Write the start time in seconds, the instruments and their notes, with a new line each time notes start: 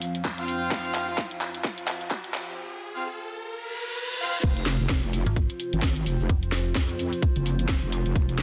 Already playing: analog synth pad F2 F3 C4, ambient pad F4 C5 F5, riser
0.02 open hi-hat
0.15 closed hi-hat
0.25 kick, clap, closed hi-hat
0.38 horn section C4 F4 F5, closed hi-hat
0.48 open hi-hat
0.71 kick, clap, closed hi-hat
0.85 closed hi-hat
0.95 clap, open hi-hat
1.08 horn section C4 F4 F5
1.18 kick, clap, closed hi-hat
1.31 closed hi-hat
1.41 clap, open hi-hat
1.54 closed hi-hat
1.64 kick, clap, closed hi-hat
1.78 closed hi-hat
1.88 clap, open hi-hat
2.01 closed hi-hat
2.11 kick, clap, closed hi-hat
2.24 closed hi-hat
2.34 clap, open hi-hat
2.94 horn section C4 F4 F5
3.50 reverse cymbal
4.20 horn section C4 F4 F5
4.43 wobble bass F1, analog synth pad C3 F3 C4, ambient pad F4, kick, closed hi-hat, crash, cabasa
4.57 closed hi-hat
4.66 snare, open hi-hat, cabasa
4.80 wobble bass F1, cabasa
4.89 kick, snare, closed hi-hat, cabasa
4.95 ambient pad C5
5.03 wobble bass F1, closed hi-hat, cabasa
5.13 open hi-hat, cabasa
5.26 fm bass G#1, closed hi-hat, cabasa
5.36 kick, closed hi-hat, cabasa
5.50 closed hi-hat
5.60 open hi-hat, cabasa
5.73 wobble bass G#1, closed hi-hat, cabasa
5.82 kick, snare, closed hi-hat, cabasa
5.96 closed hi-hat
6.06 wobble bass F1, open hi-hat, cabasa
6.20 wobble bass F1, cabasa
6.29 fm bass F1, kick, closed hi-hat, cabasa
6.43 closed hi-hat
6.52 snare, open hi-hat, cabasa
6.67 cabasa
6.75 wobble bass F2, kick, snare, closed hi-hat, cabasa
6.89 closed hi-hat, cabasa
6.99 open hi-hat, cabasa
7.13 open hi-hat, cabasa
7.22 kick, closed hi-hat, cabasa
7.36 wobble bass F#1, closed hi-hat, cabasa
7.46 open hi-hat, cabasa
7.59 closed hi-hat, cabasa
7.69 kick, snare, closed hi-hat, cabasa
7.82 wobble bass F1, closed hi-hat
7.92 open hi-hat, cabasa
8.06 wobble bass F1, closed hi-hat, cabasa
8.16 wobble bass F1, kick, closed hi-hat, cabasa
8.29 closed hi-hat
8.38 snare, open hi-hat